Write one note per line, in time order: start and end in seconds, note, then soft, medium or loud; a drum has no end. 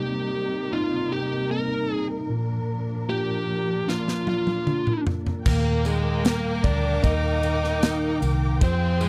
0.00 2.26 C3 medium
0.00 2.27 C3 medium
0.00 2.26 G3 medium
0.00 0.69 A#3 soft
0.00 0.69 C4 soft
0.00 0.70 D#4 soft
0.00 2.27 D#4 medium
0.00 0.75 G4 medium
0.00 5.42 A#4 medium
0.72 1.48 A#3 soft
0.72 1.49 C4 soft
0.72 1.49 D#4 soft
0.72 1.13 F4 medium
1.12 1.51 G4 medium
1.51 2.27 A#3 soft
1.51 2.27 C4 soft
1.51 2.28 D#4 soft
1.51 1.94 A#4 medium
1.94 2.06 G#4 medium
2.29 5.41 A#2 medium
2.29 5.42 A#2 medium
2.29 5.43 F3 medium
2.29 5.43 D4 medium
3.09 3.85 A#3 soft
3.09 3.85 D4 soft
3.09 3.86 F4 soft
3.09 3.90 G4 medium
3.87 4.64 A#3 soft
3.87 4.64 D4 soft
3.87 4.64 F4 soft
3.87 4.28 F4 medium
3.87 snare soft
4.08 snare soft
4.27 5.03 F4 medium
4.27 high tom medium
4.47 high tom medium
4.66 5.43 A#3 soft
4.66 5.43 D4 soft
4.66 5.43 F4 soft
4.66 mid tom medium
4.87 mid tom medium
5.07 floor tom medium
5.26 floor tom medium
5.45 6.60 D#2 loud
5.45 8.57 A#2 medium
5.45 8.57 A#3 medium
5.45 5.83 A#3 medium
5.45 8.57 A#4 medium
5.45 8.58 A#4 medium
5.45 5.86 A#4 medium
5.45 9.09 G5 medium
5.45 8.58 D6 medium
5.45 kick loud
5.45 crash loud
5.45 tambourine soft
5.85 7.03 D#3 medium
5.85 6.23 G#3 medium
5.85 6.25 G#4 medium
5.85 ride soft
5.85 tambourine medium
6.25 7.79 G3 medium
6.25 6.63 A#3 medium
6.25 6.65 A#4 medium
6.25 snare loud
6.25 ride medium
6.25 tambourine medium
6.64 7.01 D2 medium
6.64 7.02 D4 medium
6.64 7.04 D5 medium
6.64 kick medium
6.64 ride medium
7.04 8.18 D#2 loud
7.04 7.42 D#3 medium
7.04 8.19 D#4 medium
7.04 8.18 D#5 loud
7.04 kick medium
7.04 ride medium
7.43 7.82 D#3 medium
7.43 ride medium
7.43 tambourine soft
7.64 snare soft
7.83 8.22 D#3 medium
7.83 snare loud
7.83 ride medium
7.83 tambourine medium
8.22 8.59 C2 medium
8.22 8.61 D#3 medium
8.22 ride medium
8.22 tambourine medium
8.61 9.09 F2 loud
8.61 9.00 F3 medium
8.61 8.99 C4 medium
8.61 9.09 G#4 medium
8.61 9.09 C5 medium
8.61 9.03 C5 loud
8.61 9.09 F5 medium
8.61 9.09 G5 medium
8.61 9.09 C6 medium
8.61 kick loud
8.61 ride medium
8.61 tambourine soft
9.01 9.09 F3 medium
9.01 9.09 G#3 medium
9.01 9.09 G#4 medium
9.01 ride medium
9.01 tambourine medium